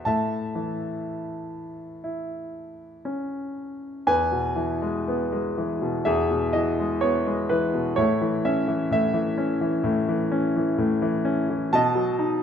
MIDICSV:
0, 0, Header, 1, 2, 480
1, 0, Start_track
1, 0, Key_signature, 3, "major"
1, 0, Tempo, 998336
1, 28, Time_signature, 4, 2, 24, 8
1, 1951, Key_signature, 4, "major"
1, 2908, Tempo, 964630
1, 3868, Tempo, 938967
1, 6143, End_track
2, 0, Start_track
2, 0, Title_t, "Grand piano"
2, 0, Program_c, 0, 0
2, 0, Control_c, 0, 64, 127
2, 25, Note_on_c, 0, 81, 76
2, 29, Note_on_c, 0, 45, 52
2, 34, Control_c, 0, 64, 0
2, 35, Note_on_c, 0, 76, 55
2, 118, Control_c, 0, 64, 127
2, 265, Note_on_c, 0, 52, 44
2, 980, Note_on_c, 0, 64, 44
2, 1201, Note_off_c, 0, 52, 0
2, 1467, Note_on_c, 0, 61, 40
2, 1689, Note_off_c, 0, 81, 0
2, 1694, Note_off_c, 0, 76, 0
2, 1933, Note_off_c, 0, 45, 0
2, 1933, Note_off_c, 0, 64, 0
2, 1938, Note_off_c, 0, 61, 0
2, 1956, Note_on_c, 0, 40, 52
2, 1957, Control_c, 0, 64, 0
2, 1957, Note_on_c, 0, 80, 78
2, 1960, Note_on_c, 0, 71, 63
2, 2035, Control_c, 0, 64, 127
2, 2076, Note_on_c, 0, 47, 42
2, 2193, Note_on_c, 0, 52, 41
2, 2318, Note_on_c, 0, 56, 48
2, 2443, Note_on_c, 0, 59, 49
2, 2553, Note_off_c, 0, 56, 0
2, 2560, Note_on_c, 0, 56, 46
2, 2674, Note_off_c, 0, 52, 0
2, 2682, Note_on_c, 0, 52, 44
2, 2789, Note_off_c, 0, 47, 0
2, 2796, Note_on_c, 0, 47, 47
2, 2893, Note_off_c, 0, 71, 0
2, 2908, Note_off_c, 0, 40, 0
2, 2909, Note_on_c, 0, 76, 82
2, 2914, Note_on_c, 0, 68, 59
2, 2916, Note_on_c, 0, 40, 60
2, 2941, Note_off_c, 0, 80, 0
2, 3029, Note_off_c, 0, 47, 0
2, 3037, Note_on_c, 0, 47, 45
2, 3133, Note_off_c, 0, 76, 0
2, 3148, Note_on_c, 0, 75, 70
2, 3151, Note_off_c, 0, 52, 0
2, 3158, Note_on_c, 0, 52, 43
2, 3273, Note_off_c, 0, 56, 0
2, 3280, Note_on_c, 0, 56, 42
2, 3376, Note_off_c, 0, 59, 0
2, 3387, Note_on_c, 0, 73, 76
2, 3397, Note_off_c, 0, 75, 0
2, 3397, Note_on_c, 0, 59, 50
2, 3506, Note_off_c, 0, 56, 0
2, 3513, Note_on_c, 0, 56, 54
2, 3628, Note_off_c, 0, 52, 0
2, 3628, Note_on_c, 0, 71, 72
2, 3636, Note_off_c, 0, 73, 0
2, 3636, Note_on_c, 0, 52, 44
2, 3742, Note_off_c, 0, 47, 0
2, 3749, Note_on_c, 0, 47, 44
2, 3851, Note_off_c, 0, 68, 0
2, 3852, Note_off_c, 0, 40, 0
2, 3857, Note_off_c, 0, 59, 0
2, 3858, Note_off_c, 0, 56, 0
2, 3860, Note_on_c, 0, 73, 85
2, 3863, Note_off_c, 0, 52, 0
2, 3864, Note_off_c, 0, 47, 0
2, 3868, Note_on_c, 0, 45, 62
2, 3870, Note_on_c, 0, 64, 56
2, 3874, Note_off_c, 0, 71, 0
2, 3876, Control_c, 0, 64, 0
2, 3952, Control_c, 0, 64, 127
2, 3990, Note_on_c, 0, 52, 52
2, 4109, Note_on_c, 0, 76, 77
2, 4111, Note_on_c, 0, 61, 52
2, 4112, Note_off_c, 0, 73, 0
2, 4219, Note_off_c, 0, 52, 0
2, 4226, Note_on_c, 0, 52, 55
2, 4337, Note_off_c, 0, 45, 0
2, 4345, Note_off_c, 0, 76, 0
2, 4345, Note_on_c, 0, 45, 55
2, 4352, Note_on_c, 0, 76, 83
2, 4453, Note_off_c, 0, 52, 0
2, 4461, Note_on_c, 0, 52, 57
2, 4575, Note_off_c, 0, 61, 0
2, 4583, Note_on_c, 0, 61, 50
2, 4696, Note_off_c, 0, 52, 0
2, 4703, Note_on_c, 0, 52, 53
2, 4810, Note_off_c, 0, 64, 0
2, 4811, Note_off_c, 0, 45, 0
2, 4811, Note_off_c, 0, 76, 0
2, 4818, Note_on_c, 0, 45, 66
2, 4938, Note_off_c, 0, 52, 0
2, 4945, Note_on_c, 0, 52, 55
2, 5056, Note_off_c, 0, 61, 0
2, 5063, Note_on_c, 0, 61, 55
2, 5182, Note_off_c, 0, 52, 0
2, 5190, Note_on_c, 0, 52, 47
2, 5294, Note_off_c, 0, 45, 0
2, 5302, Note_on_c, 0, 45, 58
2, 5415, Note_off_c, 0, 52, 0
2, 5423, Note_on_c, 0, 52, 59
2, 5533, Note_off_c, 0, 61, 0
2, 5540, Note_on_c, 0, 61, 58
2, 5661, Note_off_c, 0, 52, 0
2, 5669, Note_on_c, 0, 52, 50
2, 5773, Note_off_c, 0, 45, 0
2, 5779, Note_off_c, 0, 61, 0
2, 5785, Note_on_c, 0, 81, 99
2, 5786, Note_on_c, 0, 47, 70
2, 5787, Note_off_c, 0, 52, 0
2, 5797, Note_on_c, 0, 75, 77
2, 5802, Control_c, 0, 64, 0
2, 5882, Control_c, 0, 64, 127
2, 5900, Note_on_c, 0, 54, 52
2, 6021, Note_on_c, 0, 63, 56
2, 6143, Note_off_c, 0, 47, 0
2, 6143, Note_off_c, 0, 54, 0
2, 6143, Note_off_c, 0, 63, 0
2, 6143, Note_off_c, 0, 75, 0
2, 6143, Note_off_c, 0, 81, 0
2, 6143, End_track
0, 0, End_of_file